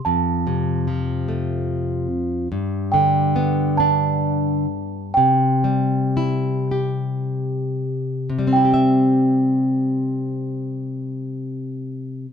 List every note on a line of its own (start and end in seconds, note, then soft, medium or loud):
0.05 2.48 F2 medium
0.05 1.24 A5 medium
0.47 2.06 C3 soft
0.88 2.48 F3 soft
1.28 2.48 A3 soft
2.52 5.12 G2 medium
2.92 4.65 D3 soft
2.92 3.74 G5 medium
3.36 5.12 B3 medium
3.77 5.12 D4 soft
3.77 5.11 A5 medium
5.14 8.28 C3 medium
5.14 7.83 G5 medium
5.64 7.84 G3 soft
6.17 8.48 E4 soft
6.71 8.48 G4 soft
8.30 12.26 C3 soft
8.39 12.33 G3 soft
8.47 12.33 C4 soft
8.53 8.73 E4 soft
8.53 12.33 G5 medium
8.65 12.33 G4 soft
8.74 12.33 E5 soft